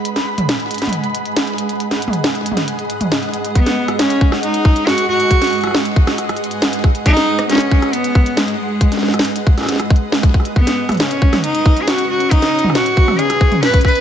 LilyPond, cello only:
\new Staff \with { instrumentName = "Cello" } { \time 4/4 \key gis \minor \tempo 4 = 137 r1 | r1 | b4 cis'4 dis'4 fis'8 fis'8~ | fis'4 r2. |
dis'4 cis'4 b4 gis8 gis8~ | gis4 r2. | b4 cis'4 dis'8.~ dis'32 gis'32 fis'8 fis'8 | dis'4 fis'4 gis'4 b'8 b'8 | }